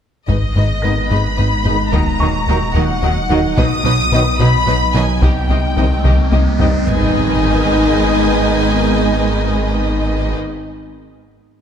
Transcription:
0.28 sub bass G#1, double bass section G#1, cello section G#2, analog synth bass G#2, viola section G#3 D#4, ambient pad G#3 B3 D#4 D#5, violin section B4 D#5, taiko
0.56 double bass section G#1, analog synth bass G#2, cello section G#2, viola section G#3 D#4, violin section B4 D#5
0.82 double bass section G#1, cello section G#2, analog synth bass G#2, trombone section D#3 G#3, viola section G#3 D#4, french horn section B3 D#4, grand piano B4 A#6, violin section B4 D#5
1.10 double bass section G#1, analog synth bass G#2, cello section G#2, viola section G#3 D#4, violin section B4 D#5 B5
1.37 double bass section G#1, analog synth bass G#2, cello section G#2, viola section G#3 D#4, violin section B4 D#5
1.64 double bass section G#1, analog synth bass G#2, cello section G#2, trombone section D#3 G#3, viola section G#3 D#4, french horn section B3 D#4, violin section B4 D#5
1.92 sub bass D#1, analog synth bass D#2, double bass section D#2, ambient pad A#2 F#3, cello section D#3, viola section F#3 D#4, violin section A#4 D#5 A#5, taiko
2.19 analog synth bass D#2, double bass section D#2, cello section D#3, viola section F#3 D#4, violin section A#4 D#5, grand piano C#6
2.47 analog synth bass D#2, double bass section D#2, cello section D#3, trombone section D#3 F#3, viola section F#3 D#4, french horn section A#3 D#4, violin section A#4 D#5
2.74 analog synth bass D#2, double bass section D#2, cello section D#3, viola section F#3 D#4, violin section A#4 D#5 F#5
3.02 analog synth bass D#2, double bass section D#2, cello section D#3, viola section F#3 D#4, violin section A#4 D#5
3.30 analog synth bass D#2, double bass section D#2, trombone section D#3 F#3, cello section D#3, viola section F#3 D#4, french horn section A#3 D#4, violin section A#4 D#5
3.57 sub bass B1, double bass section B1, analog synth bass B2, cello section B2, viola section F#3 D#4, ambient pad B3, violin section B4 D#5 D#6, taiko, riser
3.84 double bass section B1, cello section B2, analog synth bass B2, viola section F#3 D#4, violin section B4 D#5
4.12 double bass section B1, analog synth bass B2, cello section B2, trombone section D#3 F#3, viola section F#3 D#4, french horn section B3 D#4, violin section B4 D#5
4.39 double bass section B1, analog synth bass B2, cello section B2, viola section F#3 D#4, violin section B4 D#5 B5
4.66 double bass section B1, analog synth bass B2, cello section B2, viola section F#3 D#4, violin section B4 D#5
4.94 double bass section B1, analog synth bass B2, cello section B2, trombone section D#3 F#3, viola section F#3 D#4, french horn section B3 D#4, violin section B4 D#5 G#5
5.21 sub bass C2, analog synth bass C2, double bass section C2, cello section C3, viola section D#3 D#4, ambient pad G3 C4 D#4 D#5, violin section G4 D#5 G5, taiko
5.49 analog synth bass C2, double bass section C2, cello section C3, viola section D#3 D#4, violin section G4 D#5
5.76 analog synth bass C2, double bass section C2, cello section C3, trombone section D#3 G3, viola section D#3 D#4, french horn section C4 D#4, violin section G4 D#5, taiko mid
6.04 analog synth bass C2, double bass section C2, cello section C3, viola section D#3 D#4, violin section G4 D#5, taiko mid
6.32 analog synth bass C2, double bass section C2, cello section C3, viola section D#3 D#4, violin section G4 D#5, taiko high
6.59 analog synth bass C2, double bass section C2, cello section C3, viola section D#3 D#4, trombone section D#3 G3, french horn section C4 D#4, violin section G4 D#5, taiko low
6.86 sub bass G#1, double bass section G#1, cello section G#2, viola section D#3 D#4, trombone section D#3 G#3, ambient pad G#3 B3 D#4 D#5, french horn section B3 D#4, violin section B4 D#5 G#5, impact

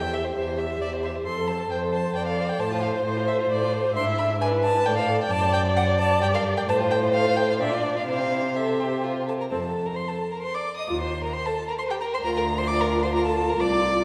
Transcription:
Already playing: cello E2, viola G4, violin G5
0.02 violin C5
0.13 violin E5
0.25 violin C5
0.36 cello E2, violin C5 E5
0.48 violin C5
0.58 violin E5
0.70 violin C5
0.81 cello E2, violin D5 E5
0.93 violin C5
1.03 violin C5 E5
1.16 violin C5
1.26 cello F2, viola A4, violin C5 C6
1.37 violin A4
1.48 violin C5 A5
1.60 violin A4
1.71 cello F2, viola C5, violin C5 G5
1.83 violin A4
1.93 violin C5 A5
2.06 violin A4
2.16 cello F2, violin C5 G5, viola D5
2.28 violin A4 F5
2.40 violin C5
2.49 violin A4 G5
2.60 cello A2, violin A4 A5, viola C5
2.71 violin F4
2.82 violin A4 F5
2.95 violin F4 C5
3.05 cello A2, violin A4 C5
3.17 violin F4
3.28 violin A4 E5
3.39 violin F4
3.50 cello A2, violin A4 D5
3.62 violin F4
3.73 violin A4 C5
3.84 violin F4
3.95 cello G#2, violin D4 C6, viola E5
4.07 violin E4
4.18 violin D4 B5
4.30 violin E4
4.41 violin D4 G#5, viola B4
4.52 violin E4
4.64 violin D4 A5
4.74 violin E4
4.85 cello A2, violin A4 G5, viola D5
4.97 violin C5 F5
5.07 violin A4
5.19 violin C5 G5
5.30 cello F#2, violin D5 A5
5.41 violin C5
5.53 violin D5 G5
5.64 violin C5
5.74 violin D5 F#5
5.86 violin C5
5.98 violin D5 A5
6.10 violin C5
6.21 cello G2, violin G4 G5
6.33 violin A#4 F5
6.45 violin G4
6.56 violin A#4 G5
6.67 cello A2, violin A4 A5, viola C5
6.79 violin F4
6.91 violin A4 G5
7.01 violin F4
7.14 violin A4 F5
7.25 violin F4
7.37 violin A4 G5
7.49 violin F4 F5
7.60 cello A#2, violin D4 E5, viola D5
7.71 violin F4 D5
7.83 violin D4
7.95 violin F4 F5
8.07 cello C3, violin E4 F5, viola C5
8.19 violin C4
8.31 violin E4
8.43 violin C4
8.56 violin A4 E5
8.80 violin G4
9.04 violin F4
9.27 violin A4 A5
9.38 violin A#4 A#5
9.50 cello F2, viola C4, violin A4 A5
9.62 violin A4 A5
9.86 violin A#4 A#5
9.96 violin C5 C6
10.08 violin A4 A5
10.31 violin A#4 A#5
10.42 violin C5 C6
10.55 violin D5 D6
10.77 violin D#5 D#6
10.87 cello D#2, viola F4
11.01 violin C5 C6
11.23 violin A#4 A#5
11.33 violin C5 C6
11.46 violin A4 A5
11.68 violin A#4 A#5
11.79 violin C5 C6
11.90 violin G4 G5
12.01 violin A#4 A#5
12.14 violin C5 C6
12.22 cello D2, viola F4, violin A#4 A#5
12.36 violin A#4 A#5
12.58 violin C5 C6
12.67 viola F4, violin D5 D6
12.80 violin A#4 A#5
13.03 violin C5 C6
13.13 viola F4, violin A#4 A#5
13.26 violin A4 A5
13.49 violin A#4 A#5
13.59 cello C2, viola F4, violin D5 D6

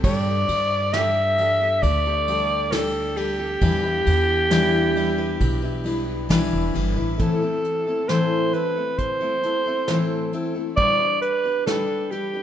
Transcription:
0.04 upright bass G2, steel-string acoustic guitar G3 D4 G4 A4, alto saxophone D5, kick, ride
0.28 steel-string acoustic guitar D4 G4 A4
0.49 upright bass G2, ride
0.93 steel-string acoustic guitar G3 D4 G4 A4, alto saxophone E5, snare, ride
1.38 steel-string acoustic guitar G3 D4 G4 A4, ride
1.61 steel-string acoustic guitar D4 G4 A4
1.82 upright bass D2, alto saxophone D5, kick, ride
2.06 steel-string acoustic guitar D4 G4 A4
2.28 steel-string acoustic guitar G3 D4 G4 A4, ride
2.72 steel-string acoustic guitar G3 D4 G4 A4, alto saxophone A4, snare, ride
3.16 steel-string acoustic guitar G3 D4 G4 A4, alto saxophone G4, ride
3.39 steel-string acoustic guitar D4 G4 A4
3.61 upright bass E2, steel-string acoustic guitar E3 G3 D4 E4 B4, kick, ride
3.84 steel-string acoustic guitar D4 E4 B4
4.06 upright bass E2, ride
4.50 steel-string acoustic guitar E3 G3 D4 E4 B4, snare, ride
4.96 steel-string acoustic guitar G3 D4 E4 B4, ride
5.18 steel-string acoustic guitar D4 E4 B4
5.41 upright bass B1, kick, ride
5.62 steel-string acoustic guitar D4 E4 B4
5.84 steel-string acoustic guitar G3 D4 E4 B4, ride
6.29 steel-string acoustic guitar E3 G3 D4 E4 B4, kick, snare, ride
6.53 upright bass E1
6.74 upright bass G1, steel-string acoustic guitar G3 D4 E4 B4, ride
6.96 upright bass A1, steel-string acoustic guitar D4 E4 B4
7.18 steel-string acoustic guitar A2 E3 A3 C4 E4 A4, alto saxophone A4, kick, closed hi-hat
7.41 steel-string acoustic guitar A3 C4 E4 A4
7.64 closed hi-hat
7.87 steel-string acoustic guitar A3 C4 E4 A4
8.09 steel-string acoustic guitar A2 E3 A3 C4 E4 A4, alto saxophone C5, snare, closed hi-hat
8.53 steel-string acoustic guitar A3 C4 E4 A4, alto saxophone B4, closed hi-hat
8.76 steel-string acoustic guitar A3 C4 E4 A4
8.98 alto saxophone C5, kick, closed hi-hat
9.21 steel-string acoustic guitar A3 C4 E4 A4
9.43 steel-string acoustic guitar A3 C4 E4 A4, closed hi-hat
9.66 steel-string acoustic guitar A3 C4 E4 A4
9.88 steel-string acoustic guitar A2 E3 A3 C4 E4 A4, snare, closed hi-hat
10.33 steel-string acoustic guitar A3 C4 E4 A4, closed hi-hat
10.54 steel-string acoustic guitar A3 C4 E4 A4
10.77 steel-string acoustic guitar G3 D4 G4 B4, alto saxophone D5, kick, closed hi-hat
10.99 steel-string acoustic guitar D4 G4 B4
11.22 alto saxophone B4, closed hi-hat
11.44 steel-string acoustic guitar D4 G4 B4
11.66 steel-string acoustic guitar G3 D4 G4 B4, alto saxophone A4, snare, closed hi-hat
12.11 steel-string acoustic guitar G3 D4 G4 B4, alto saxophone G4, closed hi-hat
12.33 steel-string acoustic guitar D4 G4 B4

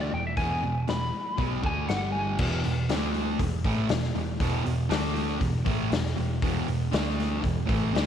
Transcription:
Already playing: distorted electric guitar D3 A3 D4
0.01 lead electric guitar D5
0.12 picked electric bass E1, distorted electric guitar E2 B2, lead electric guitar G5
0.27 lead electric guitar E5
0.37 picked electric bass E1, distorted electric guitar E2 B2 E3, lead electric guitar G#5, kick, open hi-hat
0.63 picked electric bass E1, distorted electric guitar E2 B2
0.88 picked electric bass E1, distorted electric guitar E2 B2, lead electric guitar B5, snare, open hi-hat
1.37 picked electric bass B1, distorted electric guitar B2 F#3 B3, kick, open hi-hat
1.63 picked electric bass D2, distorted electric guitar D3 A3 D4, lead electric guitar G#5, kick
1.88 picked electric bass G1, distorted electric guitar G2 D3 G3, lead electric guitar F#5, snare, open hi-hat
2.12 lead electric guitar G#5
2.39 picked electric bass E1, distorted electric guitar E2 B2 E3, kick, crash
2.64 picked electric bass E1, distorted electric guitar E2 B2, open hi-hat
2.89 picked electric bass D2, distorted electric guitar D3 A3 D4, snare, open hi-hat
3.14 open hi-hat
3.39 picked electric bass E1, distorted electric guitar E2 B2, kick, open hi-hat
3.64 picked electric bass A1, distorted electric guitar A2 E3 A3, kick, open hi-hat
3.89 picked electric bass E1, distorted electric guitar E2 B2, snare, open hi-hat
4.03 snare
4.14 picked electric bass E1, distorted electric guitar E2 B2, open hi-hat
4.40 picked electric bass E1, distorted electric guitar E2 B2 E3, kick, open hi-hat
4.64 picked electric bass E1, distorted electric guitar E2 B2, open hi-hat
4.89 picked electric bass D2, distorted electric guitar D3 A3 D4, snare, open hi-hat
5.16 open hi-hat
5.39 picked electric bass E1, distorted electric guitar E2 B2, kick, open hi-hat
5.65 picked electric bass A1, distorted electric guitar A2 E3 A3, kick, open hi-hat
5.91 picked electric bass E1, distorted electric guitar E2 B2, snare, open hi-hat
6.06 snare
6.16 picked electric bass E1, distorted electric guitar E2 B2, open hi-hat
6.42 picked electric bass E1, distorted electric guitar E2 B2 E3, kick, open hi-hat
6.68 picked electric bass E1, distorted electric guitar E2 B2, open hi-hat
6.91 picked electric bass D2, distorted electric guitar D3 A3 D4, snare, open hi-hat
7.20 snare, open hi-hat
7.42 picked electric bass E1, distorted electric guitar E2 B2, kick, open hi-hat
7.66 picked electric bass A1, distorted electric guitar A2 E3 A3, kick, open hi-hat
7.93 picked electric bass D2, distorted electric guitar D3 A3 D4, snare, open hi-hat

